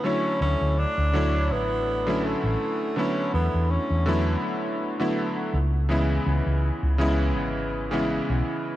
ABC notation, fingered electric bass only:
X:1
M:4/4
L:1/16
Q:"Swing 16ths" 1/4=82
K:Dlyd
V:1 name="Fingered electric bass" clef=bass
z2 D,, D,, z D,,3 A,,,4 z A,,, z2 | z2 E,, E,, z E,,2 z6 z C,,2- | C,, z C,, C,, z C,,3 G,,,4 z B,,, z2 |]